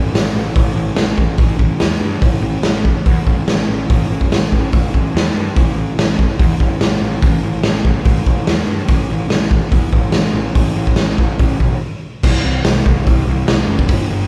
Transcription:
0.13 A1, snare, open hi-hat
0.34 A1
0.56 A1, kick, open hi-hat
0.75 A1
0.96 A1, snare, open hi-hat
1.18 A1, kick
1.38 A1, kick, open hi-hat
1.59 A1, kick
1.80 E2, snare, open hi-hat
2.00 G2
2.21 A1, kick, open hi-hat
2.41 A1
2.62 A1, snare, open hi-hat
2.85 kick
3.06 E2, kick, open hi-hat
3.26 A1, kick
3.47 A1, snare, open hi-hat
3.68 A1
3.89 A1, kick, open hi-hat
4.10 A1
4.21 kick
4.32 A1, snare, open hi-hat
4.52 A1, kick
4.73 A1, kick, open hi-hat
4.94 A1, kick
5.14 E2, snare, open hi-hat
5.34 G2
5.56 A1, kick, open hi-hat
5.76 A1
5.98 A1, snare, open hi-hat
6.19 kick
6.39 E2, kick, open hi-hat
6.60 A1, kick
6.79 A1, snare, open hi-hat
7.01 A1
7.22 A1, kick, open hi-hat
7.43 A1
7.63 A1, snare, open hi-hat
7.84 A1, kick
8.05 A1, kick, open hi-hat
8.26 A1, kick
8.47 E2, snare, open hi-hat
8.67 G2
8.88 A1, kick, open hi-hat
9.10 A1
9.28 A1, snare, open hi-hat
9.51 kick
9.72 E2, kick, open hi-hat
9.93 A1, kick
10.12 A1, snare, open hi-hat
10.33 A1
10.55 A1, kick, open hi-hat
10.76 A1
10.87 kick
10.96 A1, snare, open hi-hat
11.18 A1, kick
11.39 A1, kick, open hi-hat
11.60 B1, kick
12.23 C2, kick, crash
12.44 C2
12.64 C2, snare, open hi-hat
12.85 C2, kick
13.07 C2, kick, open hi-hat
13.27 C2
13.46 C2, snare, open hi-hat
13.67 F#1
13.79 kick
13.88 G1, kick, open hi-hat
14.10 G1

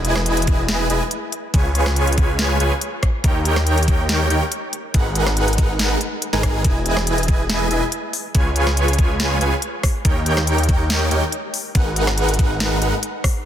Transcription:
Already playing: E1 E4 G#4 B4 D#5 G#5
0.05 closed hi-hat
0.16 cross-stick, snare
0.26 closed hi-hat
0.37 closed hi-hat
0.42 closed hi-hat
0.47 kick, closed hi-hat
0.69 snare, closed hi-hat
0.90 E1 E4 G#4 B4 D#5 G#5, closed hi-hat
1.11 closed hi-hat
1.32 closed hi-hat
1.54 C#2 F4 G#4 B4 C#5 G#5, kick, closed hi-hat
1.75 closed hi-hat
1.86 cross-stick, snare
1.96 closed hi-hat
2.07 closed hi-hat
2.12 closed hi-hat
2.18 kick, closed hi-hat
2.39 snare, closed hi-hat
2.60 C#2 F4 G#4 B4 C#5 G#5, closed hi-hat
2.81 closed hi-hat
3.03 kick, cross-stick, closed hi-hat
3.24 D#2 D#4 G4 A#4 C#5 G5, kick, closed hi-hat
3.45 closed hi-hat
3.56 cross-stick, snare
3.67 closed hi-hat
3.78 closed hi-hat
3.83 closed hi-hat
3.88 kick, closed hi-hat
4.09 snare, closed hi-hat
4.30 D#2 D#4 G4 A#4 C#5 G5, closed hi-hat
4.52 closed hi-hat
4.73 closed hi-hat
4.94 G#1 D#4 G#4 A#4 B4 F#5, kick, closed hi-hat
5.15 closed hi-hat
5.27 cross-stick, snare
5.37 closed hi-hat
5.48 closed hi-hat
5.53 closed hi-hat
5.58 kick, closed hi-hat
5.79 snare, closed hi-hat
6.01 closed hi-hat
6.22 closed hi-hat
6.33 G#1 D#4 G#4 A#4 B4 G#5, snare
6.43 kick, cross-stick, closed hi-hat
6.64 E1 E4 G#4 B4 D#5 G#5, kick, closed hi-hat
6.86 closed hi-hat
6.97 cross-stick, snare
7.07 closed hi-hat
7.18 closed hi-hat
7.23 closed hi-hat
7.28 kick, closed hi-hat
7.50 snare, closed hi-hat
7.71 E1 E4 G#4 B4 D#5 G#5, closed hi-hat
7.92 closed hi-hat
8.13 open hi-hat
8.35 C#2 F4 G#4 B4 C#5 G#5, kick, closed hi-hat
8.56 closed hi-hat
8.67 cross-stick, snare
8.77 closed hi-hat
8.88 closed hi-hat
8.93 closed hi-hat
8.99 kick, closed hi-hat
9.20 snare, closed hi-hat
9.41 C#2 F4 G#4 B4 C#5 G#5, closed hi-hat
9.62 closed hi-hat
9.83 kick, cross-stick, open hi-hat
10.05 D#2 D#4 G4 A#4 C#5 G5, kick, closed hi-hat
10.26 closed hi-hat
10.37 cross-stick, snare
10.47 closed hi-hat
10.58 closed hi-hat
10.63 closed hi-hat
10.69 kick, closed hi-hat
10.90 snare, closed hi-hat
11.11 D#2 D#4 G4 A#4 C#5 G5, closed hi-hat
11.32 closed hi-hat
11.54 open hi-hat
11.75 G#1 D#4 G#4 A#4 B4 F#5, kick, closed hi-hat
11.96 closed hi-hat
12.07 cross-stick, snare
12.18 closed hi-hat
12.29 closed hi-hat
12.34 closed hi-hat
12.39 kick, closed hi-hat
12.60 snare, closed hi-hat
12.81 G#1 D#4 G#4 A#4 B4 F#5, closed hi-hat
13.03 closed hi-hat
13.24 kick, cross-stick, open hi-hat

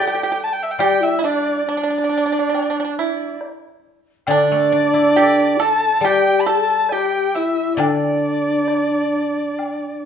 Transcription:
Already playing: G3 D4 G4 A4 D5 G5
0.01 G4 A4
0.07 G4
0.15 G4
0.23 G4
0.32 G4
0.43 A5
0.53 G5
0.63 E5
0.71 G5
0.79 G3 G4 G5, high woodblock
1.00 E4 E5
1.19 D4 E4
1.24 D4 D5
1.65 D4 D5
1.77 D4
1.83 D4
1.90 D4
1.98 D4
2.04 D4
2.09 D4
2.18 D4
2.26 D4
2.32 D4
2.39 D4
2.49 D4
2.54 D4, high woodblock
2.62 D4
2.70 D4
2.80 D4
2.85 D4
2.99 E4
3.41 low woodblock
4.27 D3 D4 D5, high woodblock
4.51 A3
4.72 D4
4.94 E4
5.16 G4 A4
5.57 A4
5.61 A5
6.01 G3 G4, high woodblock
6.05 G5
6.41 B5
6.46 A4 A5
6.89 G4, low woodblock
6.93 G5
7.35 E4 E5
7.77 D3 D4 D5, high woodblock
8.68 low woodblock
9.59 high woodblock

